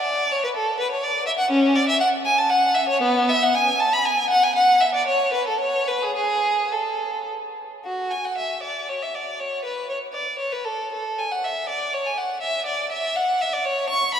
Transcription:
Already playing: D5
0.32 C#5
0.44 B4
0.56 A4
0.80 B4
0.91 C#5
1.03 D5
1.26 E5
1.39 F#5
1.51 C#4
1.76 D5
1.89 E5
2.00 F#5
2.25 G#5
2.38 A5
2.50 F#5
2.75 E5
2.89 C#5
3.02 B3
3.30 E5
3.43 F#5
3.55 G#5
3.80 A5
3.93 B5
4.06 G#5
4.30 F#5
4.44 G#5
4.56 F#5
4.81 E5
4.95 D5
5.08 C#5
5.33 B4
5.48 A4
5.61 C#5
5.88 B4
6.03 G#4
6.16 G#4
6.73 A4
7.85 F#4
8.11 G#5
8.25 F#5
8.37 E5
8.63 D5
8.89 C#5
9.02 E5
9.15 D5
9.40 C#5
9.65 B4
9.89 C#5
10.13 D5
10.39 C#5
10.52 B4
10.65 A4
10.93 A4
11.19 G#5
11.32 F#5
11.44 E5
11.69 D5
11.93 C#5
12.06 G#5
12.18 F#5
12.42 E5
12.67 D5
12.92 E5
13.16 F#5
13.41 E5
13.53 D5
13.65 C#5
13.90 C#6
14.14 B5

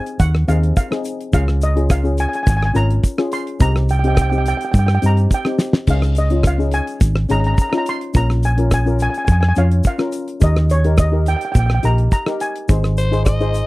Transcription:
Already playing: C4 D#4 G#4 G#5
0.06 closed hi-hat, shaker
0.20 D#2 F#5, kick, closed hi-hat, shaker
0.35 cross-stick
0.48 D#2 C4 D#4 G#4 F5, closed hi-hat, shaker
0.63 closed hi-hat
0.77 F5, kick, closed hi-hat, shaker
0.91 C4 D#4 G#4, cross-stick, shaker
1.04 closed hi-hat, shaker
1.21 closed hi-hat
1.33 C#2 C#4 F4 G#4 F5, kick, closed hi-hat, shaker
1.48 cross-stick, shaker
1.62 D#5, closed hi-hat, shaker
1.76 C#4 F4 G#4, closed hi-hat
1.90 F5, kick, cross-stick, closed hi-hat, shaker
2.03 C#4 F4 G#4, shaker
2.18 G#5, closed hi-hat, shaker
2.29 G#5
2.33 G#5, closed hi-hat, shaker
2.43 G#1 G#5, kick, closed hi-hat, shaker
2.50 G#5
2.57 G#5
2.63 G#5, cross-stick
2.74 G#1 C#4 F4 A#4 A#5, closed hi-hat, shaker
2.90 closed hi-hat
3.03 kick, closed hi-hat, shaker
3.18 C#4 F4 G#4, cross-stick, shaker
3.32 C6, closed hi-hat, shaker
3.47 closed hi-hat
3.59 C2 C4 D#4 G4 A#5, kick, closed hi-hat, shaker
3.76 cross-stick, shaker
3.89 G5, closed hi-hat, shaker
3.99 G5
4.04 C4 D#4 G4, closed hi-hat
4.08 G5
4.15 G5, kick, cross-stick, closed hi-hat, shaker
4.22 G5
4.30 C4 D#4 G4 G5, shaker
4.38 G5
4.46 G5, closed hi-hat, shaker
4.57 G5, closed hi-hat
4.62 G5, shaker
4.72 G2 G5, kick, closed hi-hat, shaker
4.79 G5
4.86 G5, cross-stick, shaker
4.95 G5
5.02 G2 C4 D#4 G4, closed hi-hat, shaker
5.06 A#5
5.17 closed hi-hat, shaker
5.30 G5, kick, closed hi-hat, shaker
5.45 C4 D#4 G4, cross-stick, shaker
5.59 snare, shaker
5.73 snare, shaker
5.87 C#2 C#4 D#4 G#4 F5, kick, closed hi-hat, crash, shaker
6.02 cross-stick, shaker
6.15 D#5, closed hi-hat, shaker
6.30 C#4 D#4 F4, closed hi-hat
6.43 F5, kick, cross-stick, closed hi-hat, shaker
6.58 C#4 D#4 G#4, shaker
6.71 G#5, closed hi-hat, shaker
6.87 closed hi-hat, shaker
7.00 G#1, kick, closed hi-hat, shaker
7.16 cross-stick
7.29 G#1 C#4 D#4 G#4 A#5, closed hi-hat, shaker
7.40 A#5
7.44 A#5, closed hi-hat
7.54 A#5, kick, closed hi-hat, shaker
7.62 A#5
7.70 C#4 D#4 F4 A#5, cross-stick, shaker
7.78 A#5
7.86 C6, closed hi-hat, shaker
8.01 closed hi-hat
8.14 A#1 C#4 F4 A#4 A#5, kick, closed hi-hat, shaker
8.30 cross-stick, shaker
8.43 G#5, closed hi-hat, shaker
8.57 C#4 F4 A#4, closed hi-hat
8.71 G#5, kick, cross-stick, closed hi-hat, shaker
8.86 C#4 F4 A#4, shaker
8.99 G#5, closed hi-hat, shaker
9.14 G#5, closed hi-hat, shaker
9.25 F2 G#5, kick, closed hi-hat, shaker
9.32 G#5
9.41 G#5, cross-stick
9.49 G#5
9.56 F2 C#4 F4 C#5 F5, closed hi-hat, shaker
9.71 closed hi-hat
9.84 F5, kick, closed hi-hat, shaker
9.98 C#4 F4 A#4, cross-stick, shaker
10.12 closed hi-hat, shaker
10.28 closed hi-hat
10.40 D#2 D#4 G4 A#4 D#5, kick, closed hi-hat, shaker
10.56 cross-stick, shaker
10.70 C#5, closed hi-hat, shaker
10.84 D#4 G4 A#4, closed hi-hat
10.98 D#5, kick, cross-stick, closed hi-hat, shaker
11.12 D#4 G4 A#4
11.26 G5, closed hi-hat, shaker
11.37 G5
11.41 G5, closed hi-hat, shaker
11.52 A#1 G5, kick, closed hi-hat, shaker
11.59 G5
11.66 G5, cross-stick
11.75 G5
11.83 A#1 D#4 G4 A#4 A#5, closed hi-hat, shaker
11.98 closed hi-hat
12.11 A#5, kick, closed hi-hat, shaker
12.26 D#4 G4 A#4, cross-stick, shaker
12.40 G#5, closed hi-hat, shaker
12.56 closed hi-hat
12.68 G#1 D#4 G#4 C5, kick, closed hi-hat, shaker
12.84 cross-stick, shaker
12.97 C5, closed hi-hat, shaker
13.11 D#4 G#4 C5, closed hi-hat, shaker
13.25 D#5, kick, cross-stick, closed hi-hat, shaker
13.40 D#4 G#4 C5, shaker
13.54 closed hi-hat, shaker

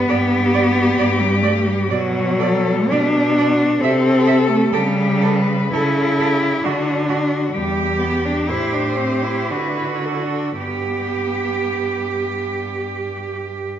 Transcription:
Already playing: B3 B4
0.08 G2 G4 D5
0.54 D5
0.98 G2 D5
1.19 G3
1.42 A3 D5
1.66 G3
1.89 B2 F#3 F#4 D5
2.39 A4 D5
2.90 B2 D4 G4 D5
3.38 F#4 D5
3.80 C3 C4 A4 E5
4.26 E5
4.49 A3
4.71 C#3 G3 G4 A4
5.21 A4 B4
5.72 C#3 E4 A4
6.20 G4 A4
6.64 D3 D4 F#4
7.08 F#4
7.53 E2 G3 G4
7.99 B3
8.25 D4
8.48 A2 E4 G4 C5
8.73 D4
8.98 C4
9.24 E4
9.50 D3 D4 F#4 B4
9.59 E4
9.68 D4
9.77 E4
9.86 D4
9.95 E4
10.04 D4 A4
10.13 E4
10.22 D4
10.58 G2 B3 G4

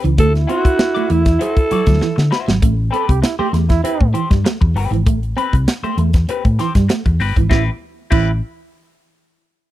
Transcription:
0.04 C#2 E3, muted clean electric guitar stroke, closed hi-hat
0.18 D2 A3 E4 A4, kick, closed hi-hat
0.35 snare, closed hi-hat
0.47 C4 E4 F#4 C5, closed hi-hat
0.65 muted fingered electric bass stroke, muted clean electric guitar stroke, kick, closed hi-hat
0.78 muted clean electric guitar stroke, snare
0.95 A3 E4 F#4 D5, closed hi-hat
1.09 E2 A3 E4, muted clean electric guitar stroke, closed hi-hat
1.25 muted clean electric guitar stroke, kick, snare, closed hi-hat
1.39 E4 F#4 A4 C5, muted clean electric guitar stroke, closed hi-hat
1.56 muted clean electric guitar stroke, kick, closed hi-hat
1.71 F#3 E4 F#4 D5, muted fingered electric bass stroke, closed hi-hat
1.86 D2 F#3, muted clean electric guitar stroke, kick, snare, closed hi-hat
2.01 E3, muted clean electric guitar stroke, snare
2.16 D3, muted clean electric guitar stroke, snare
2.31 E4 F#4 C5, muted clean electric guitar stroke, snare
2.47 G#1 F#3, muted clean electric guitar stroke, snare
2.62 A1 A3, kick, closed hi-hat
2.91 C4 G4 A4 B4, closed hi-hat
3.09 C2 G4, muted clean electric guitar stroke, kick, closed hi-hat
3.22 E4, muted clean electric guitar stroke, snare, closed hi-hat
3.39 A3 C4 G4 C5, muted fingered electric bass stroke
3.53 E2 A3, muted clean electric guitar stroke, snare, closed hi-hat
3.69 E4, muted clean electric guitar stroke, kick, snare, closed hi-hat
3.84 C4 E4 G4 B4, muted clean electric guitar stroke, closed hi-hat
3.99 A2, muted clean electric guitar stroke, kick
4.14 E3 C4 G4 C5, closed hi-hat
4.30 G2 G3, muted clean electric guitar stroke, kick, snare, closed hi-hat
4.45 A3, muted clean electric guitar stroke, snare, closed hi-hat
4.61 E2, muted clean electric guitar stroke, kick
4.74 G1 C4 G4 B4, muted clean electric guitar stroke, open hi-hat
4.91 G#1 E3, muted clean electric guitar stroke, closed hi-hat
5.06 A1 A3, kick, closed hi-hat
5.23 closed hi-hat
5.37 C4 G4 B4, closed hi-hat
5.53 C2, muted clean electric guitar stroke, kick, closed hi-hat
5.68 muted clean electric guitar stroke, snare, closed hi-hat
5.83 A3 C4 G4 C5, muted fingered electric bass stroke, closed hi-hat
5.97 E2 A3, muted clean electric guitar stroke, closed hi-hat
6.13 muted clean electric guitar stroke, kick, snare, closed hi-hat
6.28 C4 G4 B4, muted fingered electric bass stroke, muted clean electric guitar stroke, closed hi-hat
6.45 A2, muted clean electric guitar stroke, kick, closed hi-hat
6.59 E3 C4 G4 C5, snare, closed hi-hat
6.75 G2 G3, muted clean electric guitar stroke, kick, snare, closed hi-hat
6.89 A3, muted clean electric guitar stroke, snare, closed hi-hat
7.06 E2, muted clean electric guitar stroke, kick, closed hi-hat
7.20 G1 C4 G4 B4, muted clean electric guitar stroke, open hi-hat
7.36 G#1 E3, muted clean electric guitar stroke, kick, closed hi-hat
7.50 A1 E3 C4 E4 G4 B4, kick, snare
8.11 A1 E3 C4 E4 G4 B4, kick, crash

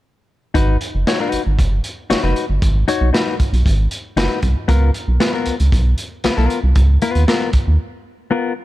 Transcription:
0.54 G#1 D#4 F#4 B4, kick, closed hi-hat
0.81 closed hi-hat
0.95 F#1
1.07 D#4 F#4 C#5, snare, closed hi-hat
1.20 D#4 F#4 B4
1.32 G#1, closed hi-hat
1.47 G#1
1.59 F#1, kick, closed hi-hat
1.84 closed hi-hat
2.10 F#1 D#4 F#4 C#5, snare, closed hi-hat
2.23 F#1 D#4 F#4 B4
2.36 closed hi-hat
2.50 G1
2.62 G#1, kick, closed hi-hat
2.88 D#4 F#4 C#5, closed hi-hat
3.01 B1
3.13 D#4 F#4 B4, snare, closed hi-hat
3.40 B1, kick, closed hi-hat
3.53 B1, closed hi-hat
3.66 G#1, kick, closed hi-hat
3.91 closed hi-hat
4.16 F#1 D#4 F#4 B4, snare, closed hi-hat
4.43 C2, kick, closed hi-hat
4.68 C#2 B3 F4 A#4, kick, closed hi-hat
4.94 closed hi-hat
5.08 B1
5.20 B3 F4 B4, snare, closed hi-hat
5.34 B3 F4 A#4
5.46 C#2, closed hi-hat
5.60 C#2, closed hi-hat
5.72 B1, kick, closed hi-hat
5.98 closed hi-hat
6.24 B1 B3 F4 B4, snare, closed hi-hat
6.38 B1 B3 F4 A#4
6.50 closed hi-hat
6.63 C2
6.76 C#2, kick, closed hi-hat
7.02 B3 F4 B4, closed hi-hat
7.15 D#2, closed hi-hat
7.28 B3 F4 A#4, snare, closed hi-hat
7.53 D#2, kick, closed hi-hat
7.68 D#2
8.31 B3 F4 A#4

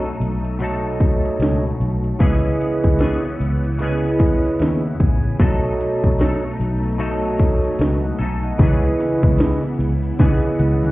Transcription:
Already playing: B2 F#3 A3 D#4 A4
0.05 closed hi-hat
0.20 B1, closed hi-hat
0.45 closed hi-hat
0.59 B2 F#3 A3 D#4 F#4 A4 C#5 D#5, closed hi-hat
0.64 A4
1.00 kick, closed hi-hat
1.25 closed hi-hat
1.39 C#2, snare, closed hi-hat
1.80 B1, closed hi-hat
2.04 closed hi-hat
2.19 C#2 C#3 E3 B3 C#4 E4 G#4 B4 D#5, kick, closed hi-hat
2.44 closed hi-hat
2.61 closed hi-hat
2.84 C#2, kick, closed hi-hat
2.99 E3 B3 C#4 G#4, snare, closed hi-hat
3.24 closed hi-hat
3.40 C#2, closed hi-hat
3.64 closed hi-hat
3.79 C#3 B3 C#4 E4 G#4 B4 D#5, closed hi-hat
3.84 G#4
4.19 kick, closed hi-hat
4.45 closed hi-hat
4.59 D#2 E5, snare, closed hi-hat
5.00 A1 G#5, kick, closed hi-hat
5.23 closed hi-hat
5.39 B1 B2 F#3 A3 D#4 F#4 A4 C#5 D#5, kick, closed hi-hat
5.63 closed hi-hat
5.81 closed hi-hat
6.04 B1, kick, closed hi-hat
6.19 F#3 A3 D#4 A4, snare, closed hi-hat
6.45 closed hi-hat
6.60 B1, closed hi-hat
6.83 closed hi-hat
6.98 B2 F#3 A3 D#4 F#4 A4 C#5 D#5, closed hi-hat
7.39 kick, closed hi-hat
7.64 closed hi-hat
7.79 C#2 B4 D#5, snare, closed hi-hat
8.03 D#5 F#5
8.19 B1 A3 D#4 A4 G#5, closed hi-hat
8.43 D#5 F#5, closed hi-hat
8.59 C#2 C#3 E3 B3 C#4 E4 G#4 B4 D#5, kick, closed hi-hat
8.63 G#4
9.00 snare, closed hi-hat
9.23 C#2, kick, closed hi-hat
9.38 snare, closed hi-hat
9.64 closed hi-hat
9.79 C#2, closed hi-hat
10.03 closed hi-hat
10.18 C#3 E3 B3 C#4 D#4 G#4 B4 D#5, kick, snare, closed hi-hat
10.25 E4
10.59 C#2 F#5, closed hi-hat, high tom
10.84 closed hi-hat, high tom

